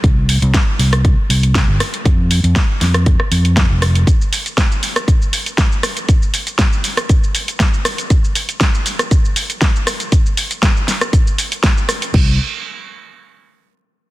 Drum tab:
CC |----------------|----------------|----------------|----------------|
HH |x-oxx-oxx-oxx-ox|x-oxx-oxx-oxx-ox|x-oxx-oxx-oxx-ox|x-oxx-oxx-oxx-ox|
SH |----------------|----------------|xxxxxxxxxxxxxxxx|xxxxxxxxxxxxxxxx|
SD |----o--r----o-r-|----o-or-r--o-r-|----o--r----o-r-|----o--r----o-r-|
BD |o---o---o---o---|o---o---o---o---|o---o---o---o---|o---o---o---o---|

CC |----------------|----------------|x---------------|
HH |x-oxx-oxx-oxx-ox|x-oxx-oxx-oxx-ox|----------------|
SH |xxxxxxxxxxxxxxxx|xxxxxxxxxxxxxxxx|----------------|
SD |----o--r----o-r-|----o-or----o-r-|----------------|
BD |o---o---o---o---|o---o---o---o---|o---------------|